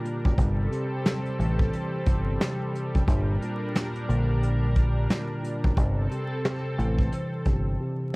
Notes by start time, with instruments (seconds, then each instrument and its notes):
Already playing: tine electric piano A#2 D3, analog synth pad G3 D4 A#4
0.03 tine electric piano A#2, closed hi-hat
0.25 fingered electric bass F#1, kick
0.37 fingered electric bass G1, tine electric piano C3, analog synth pad G3 C4 A4, kick, closed hi-hat
0.71 tine electric piano C3, closed hi-hat
1.05 tine electric piano C3, snare, closed hi-hat
1.26 closed hi-hat
1.39 fingered electric bass A1, tine electric piano E3, closed hi-hat
1.59 kick
1.73 closed hi-hat
2.06 fingered electric bass G1, tine electric piano C3, kick, closed hi-hat
2.40 tine electric piano C3, snare, closed hi-hat
2.74 tine electric piano C3, closed hi-hat
2.95 fingered electric bass F#1, kick, closed hi-hat
3.07 fingered electric bass G1, tine electric piano A#2, analog synth pad D4 A#4, kick, closed hi-hat
3.42 tine electric piano A#2, closed hi-hat
3.75 tine electric piano A#2, snare, closed hi-hat
3.95 closed hi-hat
4.09 fingered electric bass A#1, tine electric piano D3, closed hi-hat
4.43 closed hi-hat
4.76 tine electric piano A#2, kick, closed hi-hat
5.10 tine electric piano A#2, snare, closed hi-hat
5.43 tine electric piano A#2, closed hi-hat
5.64 fingered electric bass F#1, kick
5.77 fingered electric bass G1, tine electric piano C3, analog synth pad C4 A4, kick, closed hi-hat
6.11 tine electric piano C3, closed hi-hat
6.45 tine electric piano C3, snare, closed hi-hat
6.79 fingered electric bass A1, tine electric piano E3, closed hi-hat
6.99 kick, closed hi-hat
7.13 closed hi-hat
7.45 fingered electric bass G1, tine electric piano C3, kick, closed hi-hat
7.80 tine electric piano C3